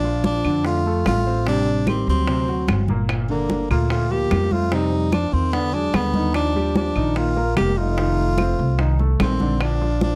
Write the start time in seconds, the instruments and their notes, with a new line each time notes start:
Already playing: upright bass A#1, trombone F3, tenor saxophone D4
0.04 grand piano F3 F4, high conga
0.24 trombone F3, tenor saxophone D4, high bongo, high conga
0.45 upright bass F2, grand piano D3 D4, high conga, claves
0.65 trombone A3, tenor saxophone F4, high bongo, high conga
0.86 grand piano A3 A4, high conga
1.06 upright bass A1, trombone A3, tenor saxophone F4, high bongo, low bongo, high conga, claves
1.27 grand piano C4 C5
1.47 grand piano C3 C4, trombone G3, tenor saxophone D4, high bongo, high conga
1.67 high bongo, high conga
1.87 trombone D#3, grand piano G3 G4, tenor saxophone C4, high bongo, high conga, claves
2.07 upright bass D2, trombone F#3, tenor saxophone C4, high conga
2.28 grand piano C3 C4, high bongo, high conga
2.48 grand piano F#3 F#4, high bongo, high conga
2.68 upright bass G1, high bongo, low bongo, high conga, claves
2.88 grand piano A#2 A#3, high bongo, high conga
3.09 high bongo, high conga, claves
3.29 trombone D3, grand piano D3 D4, tenor saxophone A#3, high conga
3.50 high bongo, high conga
3.70 upright bass D2, grand piano A#2 A#3, trombone A3, tenor saxophone F4, high conga, claves
3.90 trombone A3, tenor saxophone F4, high bongo, high conga
4.11 grand piano F3 F4, trombone A#3, tenor saxophone G4, high conga
4.31 upright bass F2, high bongo, low bongo, high conga, claves
4.51 trombone A3, grand piano C4 C5, tenor saxophone F4, high conga
4.72 grand piano C3 C4, trombone G3, tenor saxophone D#4, high bongo, high conga
4.92 high bongo, high conga
5.12 trombone F3, grand piano F3 F4, tenor saxophone D4, high bongo, high conga, claves
5.32 upright bass E2, trombone D#3, tenor saxophone C4, high conga
5.53 trombone D3, grand piano D3 D4, tenor saxophone B3, high bongo, high conga
5.73 trombone F#3, grand piano G#3 G#4, tenor saxophone D4, high bongo, high conga
5.94 upright bass D#2, trombone D3, tenor saxophone B3, high bongo, low bongo, high conga, claves
6.14 grand piano D#3 D#4, high bongo, high conga
6.34 trombone F3, tenor saxophone D4, high bongo, high conga, claves
6.55 grand piano G3 G4, high conga
6.75 trombone F3, tenor saxophone D4, high bongo, high conga
6.96 upright bass A#1, grand piano D#3 D#4, high conga, claves
7.16 trombone A#3, tenor saxophone F4, high bongo, high conga
7.36 grand piano A#3 A#4, high conga
7.57 upright bass F1, trombone A#3, tenor saxophone G4, high bongo, low bongo, high conga, claves
7.77 trombone A3, grand piano D#4 D#5, tenor saxophone F4
7.98 grand piano D#3 D#4, high bongo, high conga
8.18 high bongo, high conga
8.38 grand piano C4 C5, high bongo, high conga, claves
8.59 upright bass C2, high conga
8.79 grand piano D#3 D#4, high bongo, high conga
8.99 grand piano A3 A4, high bongo, high conga
9.20 upright bass A#1, trombone D#3, tenor saxophone C4, high bongo, low bongo, high conga, claves
9.40 grand piano D3 D4, high bongo, high conga
9.60 trombone F3, tenor saxophone D4, high bongo, high conga, claves
9.81 grand piano F3 F4, high conga
10.01 trombone F3, tenor saxophone D4, high bongo, high conga